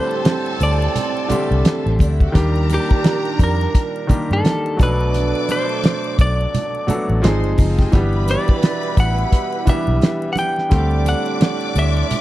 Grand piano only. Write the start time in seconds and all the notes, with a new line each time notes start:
Already playing: D3 G3 A3 C4 G4
1.28 D3 G3 A3 C4 G4
2.32 D#3 G3 A#3 D4 G4
4.07 D#3 G3 A#3 D4 G4
4.77 B2 F#3 A3 D4 A4
6.87 F#3 A3 B3 D4 A4
7.22 F3 G#3 C4 D#4 G#4
7.92 E3 G3 B3 D4 G4
9.65 E3 G3 B3 D4 G4
10.69 D3 G3 A3 C4 G4